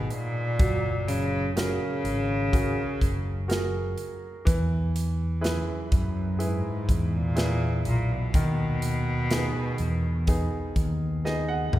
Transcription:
0.00 0.12 B2 loud
0.00 0.56 G#3 medium
0.00 0.62 D#4 medium
0.00 0.61 G#4 medium
0.00 0.61 B4 medium
0.10 1.09 A#2 loud
0.10 closed hi-hat medium
0.59 1.77 F#1 loud
0.59 4.43 F#3 medium
0.59 kick loud
0.59 closed hi-hat medium
1.08 1.56 C#3 loud
1.08 closed hi-hat loud
1.56 3.95 C#3 loud
1.56 2.50 F#4 medium
1.56 2.50 G#4 soft
1.56 2.51 A#4 medium
1.56 snare loud
1.56 closed hi-hat medium
2.04 2.73 G#1 medium
2.04 closed hi-hat medium
2.52 3.46 F#4 medium
2.52 3.47 G#4 soft
2.52 3.47 A#4 medium
2.52 kick loud
2.52 closed hi-hat medium
3.01 3.95 F#1 loud
3.01 kick medium
3.01 closed hi-hat medium
3.48 4.43 F#4 medium
3.48 4.43 G#4 medium
3.48 4.44 A#4 medium
3.48 snare loud
3.48 closed hi-hat medium
3.98 closed hi-hat medium
4.45 5.64 E2 loud
4.45 8.29 E3 medium
4.45 kick loud
4.45 closed hi-hat medium
4.96 closed hi-hat loud
5.41 5.89 F#2 medium
5.41 6.36 E4 medium
5.41 6.36 G#4 soft
5.41 6.37 B4 medium
5.41 snare loud
5.41 closed hi-hat loud
5.92 6.61 F#2 medium
5.92 6.44 F#2 medium
5.92 kick loud
5.92 closed hi-hat medium
6.39 7.34 E4 medium
6.39 7.33 G#4 soft
6.39 7.34 B4 medium
6.39 closed hi-hat medium
6.43 7.17 G#2 loud
6.88 7.82 E2 medium
6.88 kick medium
6.88 closed hi-hat medium
7.16 7.87 A#2 loud
7.36 8.30 E4 medium
7.36 8.31 G#4 medium
7.36 8.31 B4 medium
7.36 snare loud
7.36 closed hi-hat medium
7.85 8.31 B1 medium
7.85 8.14 A#2 loud
7.85 closed hi-hat medium
8.12 11.26 B2 loud
8.34 9.51 D#2 loud
8.34 11.79 D#3 medium
8.34 kick loud
8.34 closed hi-hat medium
8.82 closed hi-hat loud
9.31 10.25 B3 medium
9.31 10.25 D#4 soft
9.31 10.26 G#4 medium
9.31 snare loud
9.31 closed hi-hat loud
9.78 10.48 E2 medium
9.78 closed hi-hat medium
10.27 11.22 B3 soft
10.27 11.22 D#4 soft
10.27 11.22 G#4 medium
10.27 kick medium
10.27 closed hi-hat medium
10.76 11.69 D#2 medium
10.76 kick medium
10.76 closed hi-hat medium
11.25 11.79 B3 medium
11.25 11.79 D#4 soft
11.25 11.79 G#4 medium
11.25 11.47 D#5 medium
11.25 snare medium
11.48 11.79 F#5 medium
11.73 11.79 D#2 medium
11.73 mid tom medium

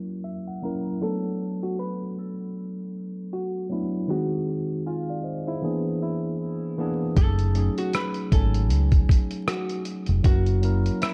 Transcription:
0.00 0.43 F#4 medium
0.24 0.45 E5 medium
0.47 0.62 F#5 medium
0.62 0.88 F#3 medium
0.62 0.89 A#3 medium
0.62 0.89 C#4 medium
0.62 0.90 E4 medium
0.62 0.90 A#4 medium
0.62 0.99 A#5 medium
1.01 1.99 F#3 medium
1.01 1.99 A3 medium
1.01 2.00 B3 medium
1.01 2.00 D4 medium
1.01 1.59 A4 loud
1.01 2.00 A4 medium
1.63 1.77 F#4 medium
1.79 2.18 B4 medium
2.18 2.74 A4 medium
3.33 3.67 F#4 medium
3.69 3.96 F#3 medium
3.69 3.96 A3 medium
3.69 3.97 B3 medium
3.69 3.97 D4 medium
3.69 3.97 E4 medium
4.07 5.06 D#3 medium
4.07 5.06 G#3 medium
4.07 5.07 C4 medium
4.07 5.07 D#4 medium
4.07 4.82 F#4 loud
4.07 4.48 G#4 medium
4.86 5.43 F4 medium
4.86 5.07 F5 medium
4.86 5.07 G#5 medium
5.09 5.24 D5 medium
5.09 5.24 F5 medium
5.24 5.45 C5 soft
5.24 5.45 D#5 medium
5.47 5.99 E4 medium
5.47 5.63 G#4 soft
5.47 5.83 C5 medium
5.62 6.57 E3 medium
5.62 6.57 A#3 medium
5.62 6.57 B3 medium
5.62 6.58 D4 medium
5.62 6.58 G#4 medium
6.02 6.36 E4 medium
6.78 7.04 E3 medium
6.78 7.04 A#3 medium
6.78 7.05 B3 medium
6.78 7.05 D4 medium
6.78 7.05 G#4 medium
7.15 7.68 F#1 loud
7.15 7.42 F#3 medium
7.15 7.42 A3 medium
7.15 7.43 C#4 medium
7.15 7.43 D#4 medium
7.15 7.43 G#4 medium
7.15 7.74 A4 loud
7.15 kick loud
7.15 closed hi-hat medium
7.39 closed hi-hat soft
7.54 8.04 F#3 medium
7.54 8.04 A3 medium
7.54 8.04 C#4 medium
7.54 8.05 D#4 medium
7.54 8.05 G#4 medium
7.54 closed hi-hat medium
7.78 7.92 F#4 medium
7.78 closed hi-hat soft
7.93 8.29 B4 medium
7.93 cross-stick loud
7.93 closed hi-hat medium
8.14 closed hi-hat soft
8.32 8.71 G#1 medium
8.32 9.30 F#3 medium
8.32 9.30 A3 medium
8.32 9.31 C#4 medium
8.32 9.31 D#4 medium
8.32 8.89 A4 medium
8.32 9.31 G#5 medium
8.32 kick medium
8.32 closed hi-hat medium
8.54 closed hi-hat soft
8.70 9.03 C#2 medium
8.70 closed hi-hat medium
8.92 kick medium
8.92 closed hi-hat soft
9.09 kick medium
9.09 closed hi-hat medium
9.31 closed hi-hat soft
9.48 9.82 F#4 medium
9.48 cross-stick loud
9.48 closed hi-hat medium
9.69 closed hi-hat soft
9.85 closed hi-hat medium
10.06 10.22 F1 medium
10.06 closed hi-hat soft
10.23 10.89 F#1 loud
10.23 10.50 F#3 medium
10.23 10.50 A#3 medium
10.23 10.50 C#4 medium
10.23 10.51 E4 medium
10.23 10.98 F#4 loud
10.23 10.51 A#4 medium
10.23 kick loud
10.23 closed hi-hat medium
10.46 closed hi-hat soft
10.62 11.11 F#3 medium
10.62 11.12 A#3 medium
10.62 11.12 C#4 medium
10.62 11.12 E4 medium
10.62 11.13 A#4 medium
10.62 closed hi-hat medium
10.86 closed hi-hat soft
11.02 11.14 E4 medium
11.02 cross-stick loud
11.02 closed hi-hat medium

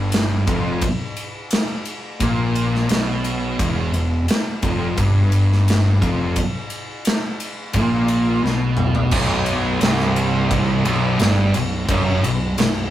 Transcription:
0.00 0.44 G1 medium
0.00 0.46 G2 loud
0.12 snare loud
0.12 ride medium
0.47 0.80 F1 medium
0.47 0.81 F2 loud
0.47 kick loud
0.47 ride medium
0.81 kick loud
0.81 ride medium
1.17 ride medium
1.51 snare loud
1.51 ride loud
1.85 ride medium
2.20 2.86 A#1 medium
2.20 2.89 A#2 loud
2.20 kick loud
2.20 ride medium
2.55 ride medium
2.75 snare soft
2.89 3.55 B1 medium
2.89 3.58 B2 loud
2.89 snare loud
2.89 ride loud
3.24 ride medium
3.59 3.92 E1 loud
3.59 3.93 E2 loud
3.59 kick loud
3.59 ride loud
3.94 4.26 E1 medium
3.94 4.22 E2 medium
3.94 ride medium
4.28 snare loud
4.28 ride loud
4.62 4.95 F1 medium
4.62 4.97 F2 loud
4.62 kick loud
4.62 ride medium
4.97 5.97 G1 medium
4.97 6.01 G2 loud
4.97 kick loud
4.97 ride medium
5.32 ride medium
5.52 snare soft
5.68 snare loud
5.68 ride medium
6.01 6.34 F1 loud
6.01 6.35 F2 loud
6.01 kick loud
6.01 ride medium
6.36 kick loud
6.36 ride loud
6.70 ride medium
7.05 snare loud
7.05 ride loud
7.40 ride medium
7.73 8.40 A#1 medium
7.73 8.43 A#2 loud
7.73 kick loud
7.73 ride medium
8.08 ride medium
8.44 9.09 B1 medium
8.44 9.12 B2 loud
8.44 snare medium
8.77 mid tom loud
8.95 floor tom medium
9.11 9.78 B0 loud
9.11 9.80 B1 loud
9.11 kick loud
9.11 crash loud
9.46 ride medium
9.81 10.81 C1 loud
9.81 10.84 C2 loud
9.81 snare loud
9.81 ride loud
10.16 ride medium
10.51 kick loud
10.51 ride medium
10.85 11.18 B0 medium
10.85 11.19 B1 loud
10.85 ride medium
11.19 11.52 G1 medium
11.19 11.53 G2 loud
11.19 snare loud
11.19 ride loud
11.54 11.87 B0 medium
11.54 11.82 B1 medium
11.54 ride medium
11.88 12.21 F#1 medium
11.88 12.22 F#2 loud
11.88 kick loud
11.88 ride loud
12.23 12.55 B0 medium
12.23 12.51 B1 medium
12.23 ride medium
12.58 12.90 B0 medium
12.58 12.86 B1 medium
12.58 snare loud
12.58 ride loud

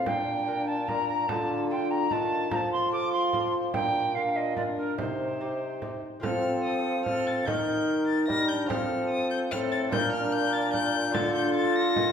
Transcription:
0.06 1.25 A#2 medium
0.06 1.28 A#2 medium
0.06 0.88 D4 medium
0.06 0.88 A#4 medium
0.06 0.68 G5 medium
0.06 frame drum medium
0.47 0.84 D4 soft
0.47 0.84 F4 soft
0.47 0.85 A#4 medium
0.67 0.88 A5 medium
0.87 1.25 D4 medium
0.87 1.28 D4 medium
0.87 1.25 F4 medium
0.87 1.28 A#4 medium
0.87 1.26 A#4 medium
0.87 1.07 A#5 loud
0.87 frame drum soft
1.07 1.29 A#5 medium
1.27 2.12 D3 medium
1.27 2.07 D3 medium
1.27 2.06 F4 medium
1.27 2.07 A4 medium
1.27 1.69 A5 medium
1.27 frame drum medium
1.70 2.07 D4 medium
1.70 2.07 F4 soft
1.70 2.07 A4 medium
1.70 1.91 G5 loud
1.90 2.12 A#5 medium
2.11 2.51 D#3 medium
2.11 2.47 D#3 medium
2.11 2.47 D4 medium
2.11 2.50 F4 medium
2.11 2.48 F4 medium
2.11 2.51 A4 medium
2.11 2.48 A4 medium
2.11 2.50 A5 medium
2.11 frame drum soft
2.51 3.75 F3 medium
2.51 3.70 F3 medium
2.51 3.57 F4 medium
2.51 3.72 A4 medium
2.51 2.71 A5 loud
2.51 2.56 A#5 medium
2.51 frame drum medium
2.72 2.91 C6 medium
2.92 3.29 C4 medium
2.92 3.29 F4 medium
2.92 3.29 A4 medium
2.92 3.11 D6 loud
3.12 3.52 C6 medium
3.33 3.70 C4 medium
3.33 3.70 F4 medium
3.33 3.71 A4 medium
3.33 frame drum medium
3.73 4.81 A#2 medium
3.73 4.94 A#2 soft
3.73 4.14 D4 medium
3.73 4.14 A#4 medium
3.73 4.16 G5 loud
3.73 frame drum medium
4.14 4.53 D4 soft
4.14 4.55 D4 medium
4.14 4.53 F4 soft
4.14 4.55 A#4 medium
4.14 4.53 A#4 medium
4.14 4.37 F5 medium
4.35 4.55 D#5 medium
4.55 5.00 D4 medium
4.55 4.94 D4 medium
4.55 4.95 F4 medium
4.55 5.00 A#4 medium
4.55 4.95 A#4 medium
4.55 4.61 D5 medium
4.55 frame drum soft
4.77 4.96 A#4 medium
4.97 6.00 C3 medium
4.97 5.99 C3 medium
4.97 6.03 D#4 medium
4.97 6.03 G4 medium
4.97 6.00 C5 medium
4.97 frame drum medium
5.41 5.78 C4 soft
5.41 5.78 D#4 soft
5.41 5.78 G4 soft
5.82 6.19 C4 soft
5.82 6.20 D#4 soft
5.82 6.20 G4 medium
5.82 frame drum soft
6.20 7.43 F3 medium
6.20 7.41 C4 medium
6.20 7.02 C4 medium
6.20 7.42 F4 medium
6.20 7.43 A4 medium
6.20 7.02 A4 medium
6.20 6.61 F6 loud
6.20 frame drum medium
6.64 7.05 D#6 loud
7.06 7.46 C4 medium
7.06 7.48 A4 medium
7.06 7.29 F6 loud
7.06 frame drum medium
7.27 7.48 A6 loud
7.43 8.30 D#3 medium
7.43 8.25 D#3 medium
7.43 8.64 D#4 medium
7.43 8.65 A#4 medium
7.43 8.28 A#4 medium
7.43 8.07 G6 loud
7.47 8.27 D#4 medium
7.47 frame drum medium
8.07 8.27 A6 loud
8.28 8.71 G3 medium
8.28 8.66 G3 medium
8.28 8.51 D#4 medium
8.28 8.71 A#4 medium
8.28 8.50 A#6 loud
8.28 frame drum medium
8.48 8.72 D4 medium
8.48 8.68 G6 loud
8.66 9.54 F3 medium
8.66 9.87 C4 medium
8.66 9.87 F4 medium
8.66 9.88 A4 medium
8.66 9.51 A4 medium
8.66 9.09 F6 medium
8.66 frame drum medium
8.70 9.48 F3 medium
8.70 9.51 C4 medium
9.09 9.30 D#6 loud
9.31 9.39 G6 loud
9.51 9.88 A2 medium
9.51 9.95 A2 medium
9.51 9.91 C4 medium
9.51 9.92 A4 medium
9.51 9.59 F6 loud
9.51 frame drum medium
9.72 9.80 A6 loud
9.88 11.10 A#2 medium
9.88 11.09 D4 medium
9.88 11.12 D4 medium
9.88 11.10 F4 medium
9.88 11.10 A#4 medium
9.88 10.11 G6 loud
9.93 11.14 A#2 loud
9.93 11.13 A#4 medium
9.93 frame drum medium
10.12 10.34 F6 loud
10.32 10.55 G6 loud
10.53 10.73 A6 loud
10.73 11.16 G6 loud
10.73 frame drum medium
11.11 11.92 D3 medium
11.11 12.12 D4 medium
11.11 12.12 F4 medium
11.11 12.12 A4 medium
11.11 11.34 A6 loud
11.11 frame drum medium
11.15 11.98 D3 loud
11.15 12.12 F4 loud
11.15 12.12 A4 medium
11.35 11.54 G6 loud
11.54 11.77 A6 loud
11.75 12.12 A#6 loud
11.96 12.12 D#3 medium
11.96 frame drum medium

